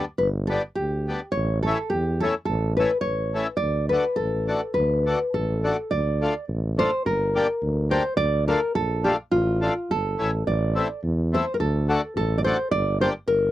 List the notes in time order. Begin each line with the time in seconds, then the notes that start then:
0.18 G1 B4
0.47 G3 B3 D4 A4
0.75 D2 G4
1.08 G3 B3 D4
1.32 C#5
1.36 A1
1.63 A3 C#4 A4
1.67 E4
1.90 E2 G4
2.20 A3 C#4 E4 A4
2.45 A1 A4
2.77 A3 C#4 E4 B4
3.01 C#5
3.05 A1
3.34 A3 C#4 E4
3.57 D5
3.62 D2
3.89 A3 D4 F#4 B4
4.16 A1 A4
4.48 A3 D4 F#4
4.74 D2 B4
5.06 A3 D4 F#4
5.34 A1 A4
5.64 A3 D4 F#4
5.91 D2 D5
6.21 A3 D4 F4
6.48 A1
6.78 A3 D4 F4 C5
7.05 G1 A#4
7.35 A#3 D4 G4
7.62 D2
7.90 A#3 D4 G4 C5
8.17 D2 D5
8.48 A3 D4 F4 A#4
8.75 A#1 A4
9.04 A3 D4 F4 G4
9.31 A1 F4
9.61 A3 D4 F4
9.90 G1 A4
10.18 A1 A3 C#4 E4
10.47 A1 D5
10.75 A3 C4 E4
11.03 E2
11.33 A3 C4 E4 C5
11.54 A#4
11.60 D2 A4
11.88 A3 D4 F#4
12.16 A1 A4
12.38 D5
12.44 A3 D4 F#4 C5
12.71 G1 D5
13.01 A#3 D4 G4 C5
13.28 G1 A#4